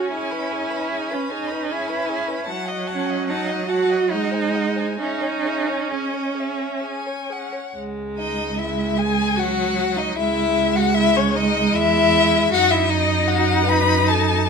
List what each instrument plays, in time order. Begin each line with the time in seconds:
Already playing: viola C#4, cello F#4, violin C#5 G#5
0.11 cello E4, violin G#4 G#5
0.30 violin B4 B5
0.51 violin G#4 G#5
0.70 violin B4 B5
0.90 violin G#4 G#5
1.10 cello C#4, violin B4 B5
1.30 cello D#4, violin G#4 G#5
1.47 violin B5
1.51 violin B4
1.66 violin G#4 G#5
1.71 cello E4
1.87 violin B4 B5
2.05 violin G#4 G#5
2.25 violin B4 B5
2.45 violin F#5 A5
2.51 viola F#3
2.66 violin D#5 F#5
2.87 violin F#5 A5
2.91 cello C#4
3.07 violin D#5 F#5
3.28 cello D#4, violin F#5 A5
3.47 violin D#5 F#5
3.68 cello F#4, violin F#5 A5
3.90 violin D#5 F#5
4.10 viola G#3, cello D#4, violin D#5 F#5
4.31 violin C5 G#5
4.54 violin D#5 F#5
4.75 violin C5 G#5
4.98 viola C#4, cello D#4, violin G#4 E5
5.20 violin C#5 G#5
5.44 violin G#4 E5
5.68 violin C#5 G#5
5.90 cello C#4, violin G#4 D#5
6.13 violin C#5
6.35 violin G#4
6.39 violin E5
6.59 violin C#5
6.83 violin G#4 G#5
7.06 violin C#5
7.30 violin G#4 F#5
7.52 violin C#5
7.75 cello C#2, viola G#3
8.17 violin D#4 D#5
8.58 viola G#3, violin E4 E5
8.97 violin G#4 G#5
9.37 viola F#3, violin F#4 F#5
9.96 violin D#4 D#5
10.15 cello C#2, viola G#3, violin E4 E5
10.75 violin F#4 F#5
10.94 violin E4 E5
11.17 violin C#4 C#5
11.35 violin D#4 D#5
11.73 cello E2, violin E4 E5
12.51 cello F#2, viola D#4, violin F#4 F#5
12.71 violin E4 E5
12.89 violin D#4 D#5
13.27 violin F#4 F#5
13.65 violin B4 B5
14.08 violin A4 A5